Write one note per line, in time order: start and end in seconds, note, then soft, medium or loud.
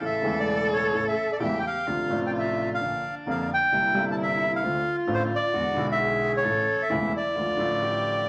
0.00 0.21 A1 soft
0.00 0.21 A2 soft
0.00 0.20 C#3 soft
0.00 0.21 E3 soft
0.00 0.21 A3 soft
0.00 0.21 E4 soft
0.00 1.42 A4 loud
0.06 0.39 E5 medium
0.22 0.90 E1 medium
0.22 0.90 E2 medium
0.22 0.89 C#3 medium
0.22 0.90 E3 soft
0.22 0.90 A3 medium
0.26 0.91 E4 medium
0.40 0.70 D5 medium
0.73 1.04 C#5 medium
0.93 1.13 A1 soft
0.93 1.13 A2 soft
0.93 1.13 C#3 soft
0.93 1.13 E3 soft
0.93 1.13 A3 soft
0.93 1.13 E4 soft
1.08 1.31 E5 medium
1.32 1.37 D5 medium
1.40 1.60 E1 medium
1.40 1.60 E2 medium
1.40 1.60 C#3 medium
1.40 1.60 E3 soft
1.40 1.60 A3 soft
1.40 1.60 E4 medium
1.40 1.88 G4 medium
1.44 1.59 E5 medium
1.59 1.65 G5 medium
1.67 2.20 F5 medium
1.87 2.07 D2 soft
1.87 2.07 C3 soft
1.87 2.07 D3 soft
1.87 2.07 F3 soft
1.87 2.07 A3 soft
1.87 2.07 D4 soft
1.87 2.80 F4 medium
2.08 2.77 A1 medium
2.08 2.77 A2 medium
2.08 2.76 C3 medium
2.08 2.77 F3 soft
2.08 2.78 A3 soft
2.13 2.78 D4 medium
2.26 2.31 G5 medium
2.39 2.69 E5 medium
2.74 3.15 F5 medium
2.80 3.00 A#1 soft
2.80 3.00 A#2 soft
2.80 3.00 D3 soft
2.80 3.00 F3 soft
2.80 3.01 A#3 soft
2.80 3.74 D4 medium
2.80 3.01 F4 soft
3.26 3.46 F1 medium
3.26 3.46 F2 medium
3.26 3.46 D3 medium
3.26 3.46 F3 soft
3.26 3.46 A#3 medium
3.26 3.46 F4 medium
3.31 3.50 F5 medium
3.54 4.05 G5 medium
3.72 3.92 C2 medium
3.72 3.92 C2 soft
3.72 3.91 C3 soft
3.72 3.92 G3 soft
3.72 3.92 A#3 soft
3.72 3.92 E4 soft
3.72 4.64 E4 medium
3.93 4.59 G1 medium
3.93 4.59 G2 medium
3.93 4.58 C3 medium
3.93 4.59 G3 medium
3.93 4.60 A#3 soft
3.97 4.61 E4 medium
4.11 4.16 A5 medium
4.23 4.52 E5 medium
4.56 4.96 F5 medium
4.63 4.82 D2 medium
4.63 4.82 D2 soft
4.63 4.82 D3 soft
4.63 4.82 A3 soft
4.63 4.82 C4 soft
4.63 5.55 F4 medium
4.63 4.82 F4 soft
5.07 5.27 A1 medium
5.07 5.28 A1 medium
5.07 5.27 A2 medium
5.07 5.27 D3 medium
5.07 5.27 A3 medium
5.07 5.28 C4 medium
5.07 5.28 F4 medium
5.14 5.23 C5 medium
5.35 5.86 D5 medium
5.53 5.73 E2 soft
5.53 5.74 E2 medium
5.53 5.73 D3 soft
5.53 5.73 E3 soft
5.53 5.73 G#3 soft
5.53 5.73 B3 soft
5.53 5.73 E4 soft
5.53 6.01 F#4 medium
5.75 6.41 B1 medium
5.75 6.42 B1 medium
5.75 6.42 B2 medium
5.75 6.41 D3 medium
5.75 6.41 G#3 medium
5.75 6.42 B3 medium
5.79 6.43 E4 medium
5.92 6.32 E5 medium
5.99 6.45 G#4 medium
6.37 6.82 C#5 medium
6.43 6.64 A1 soft
6.43 6.64 A1 medium
6.43 6.64 A2 soft
6.43 6.64 C#3 soft
6.43 6.64 E3 soft
6.43 6.64 A3 soft
6.43 6.64 E4 soft
6.43 6.91 A4 medium
6.82 7.13 E5 medium
6.90 7.10 E1 medium
6.90 7.10 E2 medium
6.90 7.10 C#3 medium
6.90 7.10 E3 medium
6.90 7.10 A3 medium
6.90 7.38 E4 medium
6.90 7.10 E4 medium
7.17 8.29 D5 medium
7.36 7.55 D2 soft
7.36 7.56 D2 medium
7.36 7.55 D3 soft
7.36 7.56 F3 soft
7.36 7.56 A3 soft
7.36 7.84 F4 medium
7.36 7.56 F4 soft
7.57 8.25 A1 medium
7.57 8.25 A2 medium
7.57 8.24 D3 medium
7.57 8.24 F3 medium
7.57 8.25 A3 medium
7.61 8.26 F4 medium
7.82 8.29 G4 medium